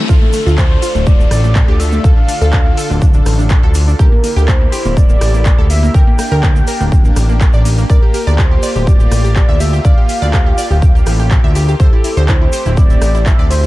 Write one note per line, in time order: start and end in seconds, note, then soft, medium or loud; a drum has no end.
0.09 0.19 D2 loud
0.09 7.86 D3 medium
0.09 3.96 D4 medium
0.09 3.96 F4 medium
0.09 0.16 F4 loud
0.09 0.54 A4 medium
0.09 3.96 A4 medium
0.09 kick loud
0.09 downlifter medium
0.09 shaker medium
0.22 0.28 A3 medium
0.33 0.40 A3 medium
0.33 open hi-hat loud
0.33 shaker medium
0.46 0.78 D2 medium
0.46 0.53 F4 medium
0.46 shaker soft
0.58 0.65 A3 medium
0.58 1.08 C5 medium
0.58 kick loud
0.58 clap loud
0.58 shaker medium
0.71 0.77 A3 medium
0.82 0.89 F4 loud
0.82 open hi-hat loud
0.82 shaker medium
0.95 1.26 D1 loud
0.95 1.01 A3 medium
0.95 shaker soft
1.06 1.14 A3 medium
1.06 1.30 D5 loud
1.06 kick loud
1.06 shaker soft
1.20 1.26 A3 medium
1.20 shaker soft
1.31 1.63 A1 loud
1.31 1.81 D5 loud
1.31 cross-stick medium
1.31 open hi-hat loud
1.31 shaker loud
1.44 1.50 A3 medium
1.44 shaker soft
1.55 1.62 A3 medium
1.55 kick loud
1.55 clap loud
1.55 shaker soft
1.68 2.00 D2 medium
1.68 1.74 G4 medium
1.80 1.87 A3 medium
1.80 2.06 E5 loud
1.80 open hi-hat loud
1.80 shaker medium
1.92 1.99 A3 medium
1.92 shaker soft
2.04 2.14 D2 loud
2.04 2.11 A4 loud
2.04 3.51 F5 loud
2.04 kick loud
2.04 shaker medium
2.17 2.23 D4 medium
2.28 2.35 D4 medium
2.28 open hi-hat loud
2.28 shaker medium
2.41 2.73 D2 medium
2.41 2.48 A4 medium
2.41 shaker soft
2.52 2.60 D4 medium
2.52 kick loud
2.52 clap loud
2.52 shaker soft
2.66 2.72 D4 medium
2.77 2.84 A4 loud
2.77 open hi-hat loud
2.77 shaker loud
2.90 3.22 D1 loud
2.90 2.96 D4 medium
2.90 shaker soft
3.02 3.09 D4 medium
3.02 kick loud
3.02 shaker medium
3.14 3.21 D4 medium
3.14 shaker soft
3.26 3.58 A1 loud
3.26 cross-stick medium
3.26 open hi-hat loud
3.26 shaker medium
3.39 3.45 D4 medium
3.39 shaker soft
3.49 3.57 D4 medium
3.49 kick loud
3.49 clap loud
3.49 shaker medium
3.63 3.95 D2 medium
3.63 3.70 A4 medium
3.74 3.82 D4 medium
3.74 open hi-hat loud
3.74 shaker medium
3.88 3.94 D4 medium
3.88 shaker soft
3.99 4.09 D2 loud
3.99 11.76 A#3 medium
3.99 5.93 E4 medium
3.99 4.06 G4 loud
3.99 13.67 G4 medium
3.99 4.50 A#4 medium
3.99 kick loud
3.99 shaker medium
4.12 4.18 A#3 medium
4.24 4.31 A#3 medium
4.24 open hi-hat loud
4.24 shaker medium
4.36 4.68 D2 medium
4.36 4.43 G4 medium
4.36 shaker soft
4.48 4.55 A#3 medium
4.48 4.98 C5 medium
4.48 kick loud
4.48 clap loud
4.48 shaker medium
4.61 4.67 A#3 medium
4.72 4.79 G4 medium
4.72 open hi-hat loud
4.72 shaker medium
4.85 5.17 D1 loud
4.85 4.91 A#3 medium
4.85 shaker soft
4.97 5.04 A#3 medium
4.97 5.21 D5 loud
4.97 kick loud
4.97 shaker medium
5.09 5.16 A#3 medium
5.09 shaker soft
5.21 5.53 A1 loud
5.21 5.67 D5 loud
5.21 cross-stick medium
5.21 open hi-hat loud
5.21 shaker medium
5.34 5.40 A#3 medium
5.34 shaker soft
5.45 5.53 A#3 medium
5.45 kick loud
5.45 clap loud
5.45 shaker medium
5.59 5.90 D2 medium
5.59 5.65 A4 medium
5.70 5.77 A#3 medium
5.70 5.96 E5 loud
5.70 open hi-hat loud
5.70 shaker medium
5.83 5.89 A#3 medium
5.83 shaker soft
5.94 6.04 D2 loud
5.94 7.88 D4 medium
5.94 6.01 A#4 loud
5.94 7.41 G5 loud
5.94 kick loud
5.94 shaker medium
6.07 6.13 A#3 medium
6.19 6.26 A#3 medium
6.19 cross-stick medium
6.19 open hi-hat loud
6.19 shaker loud
6.31 6.63 D2 medium
6.31 6.38 A#4 medium
6.31 shaker soft
6.43 6.50 A#3 medium
6.43 kick loud
6.43 clap loud
6.43 shaker medium
6.56 6.62 A#3 medium
6.56 shaker soft
6.67 6.74 A#4 medium
6.67 open hi-hat loud
6.67 shaker loud
6.80 7.12 D1 loud
6.80 6.87 A#3 medium
6.80 shaker soft
6.92 6.99 A#3 medium
6.92 kick loud
6.92 shaker medium
7.05 7.11 A#3 medium
7.05 shaker soft
7.16 7.49 A1 loud
7.16 cross-stick medium
7.16 open hi-hat loud
7.16 shaker loud
7.29 7.35 A#3 medium
7.29 shaker soft
7.41 7.48 A#3 medium
7.41 kick loud
7.41 clap loud
7.41 shaker medium
7.53 7.85 A1 medium
7.53 7.60 D5 medium
7.53 shaker soft
7.65 7.72 A#3 medium
7.65 open hi-hat loud
7.65 shaker loud
7.77 7.84 A#3 medium
7.77 shaker soft
7.90 7.99 D2 loud
7.90 11.76 F4 medium
7.90 8.40 A#4 medium
7.90 7.96 D5 loud
7.90 kick loud
7.90 shaker medium
8.02 8.09 G4 medium
8.14 8.21 G4 medium
8.14 open hi-hat loud
8.14 shaker medium
8.27 8.58 D2 medium
8.27 8.33 D5 medium
8.27 shaker soft
8.38 8.45 G4 medium
8.38 8.89 C5 medium
8.38 kick loud
8.38 clap loud
8.38 shaker medium
8.51 8.57 G4 medium
8.63 8.70 D5 medium
8.63 open hi-hat loud
8.63 shaker loud
8.76 9.07 D1 loud
8.76 8.82 G4 medium
8.76 shaker soft
8.87 8.94 G4 medium
8.87 9.11 D5 loud
8.87 kick loud
8.87 shaker medium
9.00 9.06 G4 medium
9.00 shaker soft
9.11 9.44 A1 loud
9.11 9.62 D5 loud
9.11 cross-stick medium
9.11 open hi-hat loud
9.11 shaker loud
9.24 9.31 G4 medium
9.24 shaker soft
9.36 9.43 G4 medium
9.36 kick loud
9.36 clap loud
9.36 shaker soft
9.49 9.80 D2 medium
9.49 9.55 E5 loud
9.60 9.67 G4 medium
9.60 9.86 E5 loud
9.60 open hi-hat loud
9.60 shaker medium
9.73 9.79 G4 medium
9.73 shaker soft
9.85 9.94 D2 loud
9.85 9.92 D5 loud
9.85 11.31 F5 loud
9.85 kick loud
9.85 shaker medium
9.98 10.04 G4 medium
10.09 10.16 G4 medium
10.09 open hi-hat loud
10.09 shaker medium
10.22 10.53 D2 medium
10.22 10.28 D5 medium
10.22 shaker soft
10.33 10.40 G4 medium
10.33 kick loud
10.33 clap loud
10.33 shaker soft
10.46 10.53 G4 medium
10.58 10.65 D5 loud
10.58 open hi-hat medium
10.58 shaker loud
10.71 11.02 D1 loud
10.71 10.77 G4 medium
10.71 shaker soft
10.82 10.89 G4 medium
10.82 kick loud
10.82 shaker medium
10.95 11.01 G4 medium
10.95 shaker soft
11.06 11.39 A1 loud
11.06 cross-stick medium
11.06 open hi-hat loud
11.06 shaker medium
11.19 11.26 G4 medium
11.19 shaker soft
11.31 11.38 G4 medium
11.31 kick loud
11.31 clap loud
11.31 shaker soft
11.44 11.75 D2 medium
11.44 11.50 E5 medium
11.55 11.62 G4 medium
11.55 open hi-hat loud
11.55 shaker medium
11.68 11.75 G4 medium
11.68 shaker soft
11.80 11.90 D2 loud
11.80 13.67 A3 medium
11.80 13.67 C4 medium
11.80 12.30 A4 medium
11.80 11.87 C5 loud
11.80 kick loud
11.80 shaker soft
11.93 11.99 E4 medium
12.04 12.11 E4 medium
12.04 open hi-hat loud
12.04 shaker medium
12.17 12.48 D2 medium
12.17 12.23 C5 medium
12.17 shaker soft
12.28 12.36 E4 medium
12.28 12.77 C5 loud
12.28 kick loud
12.28 clap loud
12.28 shaker soft
12.42 12.48 E4 medium
12.52 12.60 C5 medium
12.52 open hi-hat loud
12.52 shaker medium
12.66 12.97 D1 loud
12.66 12.72 E4 medium
12.66 shaker soft
12.77 12.84 E4 medium
12.77 13.28 D5 loud
12.77 kick loud
12.77 shaker soft
12.90 12.96 E4 medium
12.90 shaker soft
13.02 13.34 A1 loud
13.02 cross-stick medium
13.02 open hi-hat loud
13.02 shaker medium
13.15 13.21 E4 medium
13.15 shaker soft
13.26 13.33 E4 medium
13.26 13.50 E5 loud
13.26 kick loud
13.26 clap loud
13.26 shaker soft
13.39 13.67 D2 medium
13.39 13.45 D5 medium
13.50 13.57 E4 medium
13.50 13.67 C5 loud
13.50 open hi-hat loud
13.50 shaker medium
13.63 13.67 E4 medium
13.63 shaker soft